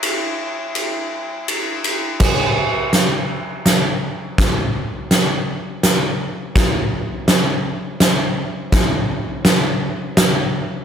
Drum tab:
CC |------|x-----|------|------|
RD |x-x-xx|------|------|------|
HH |------|--x-x-|x-x-x-|x-x-x-|
SD |------|o-o-o-|o-o-o-|o-o-o-|
BD |------|o-----|o-----|o-----|

CC |------|
RD |------|
HH |x-x-x-|
SD |o-o-o-|
BD |o-----|